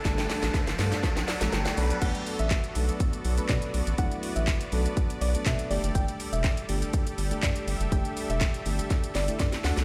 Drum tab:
CC |----------------|x---------------|----------------|----------------|
HH |-xox-xox-xox-xox|xxoxxxoxxxoxxxox|xxoxxxoxxxoxxxox|xxoxxxoxxxoxxxox|
SH |xxxxxxxxxxxxxxxx|xxxxxxxxxxxxxxxx|xxxxxxxxxxxxxxxx|xxxxxxxxxxxxxxxx|
CP |----------------|----x-------x---|----x-------x---|----x-------x---|
SD |oooooooooooooo--|----o-------o---|----o-------o---|----o-------o---|
BD |o---o---o-------|o---o---o---o---|o---o---o---o---|o---o---o---o---|

CC |----------------|
HH |xxoxxxoxxxoxxxox|
SH |xxxxxxxxxxxxxxxx|
CP |----x-----------|
SD |----o---o-o-oooo|
BD |o---o---o---o---|